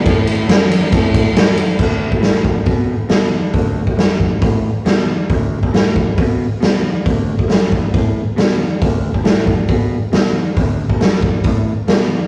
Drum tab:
CC |----------------|x---------------|----------------|----------------|
RD |x-x-x-x-x-x-x-x-|----------------|----------------|----------------|
HH |----------------|----o---o---o---|o---o---o---o---|o---o---o---o---|
SD |----o-------o---|----o-------o---|----o-------o---|----o-------o---|
BD |o-------o-o-----|o--o--o-o-------|o--o--o-o-------|o--o--o-o-------|

CC |----------------|----------------|----------------|
RD |----------------|----------------|----------------|
HH |o---o---o---o---|o---o---o---o---|o---o---o---o---|
SD |----o-------o---|----o-------o---|----o-------o---|
BD |o--o--o-o-------|o--o--o-o-------|o--o--o-o-------|